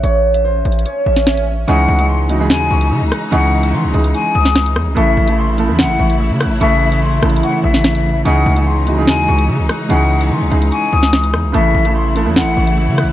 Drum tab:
HH |x--------x--------x-x-x-x--------x-----x--------|x--------x--------x-----x--------x--------x-----|x--------x--------x--x--x--------x-----x--------|x--------x--------x-----x--------x--------x-----|
SD |---------------------------------o--o-----------|------------------------o-----------------r-----|---------------------------------o--o-----r-----|------------------------o-----------------r-----|

HH |x--------x--------x-x-x-x--------x-----x--------|x--------x--------x-----x--------x--------x-----|x--------x--------x--x--x--------x-----x--------|x--------x--------x-----x--------x--------x-----|
SD |------------------r--------------o--o-----------|------------------------o-----------------r-----|---------------------------------o--o-----r-----|------------------------o-----------------r-----|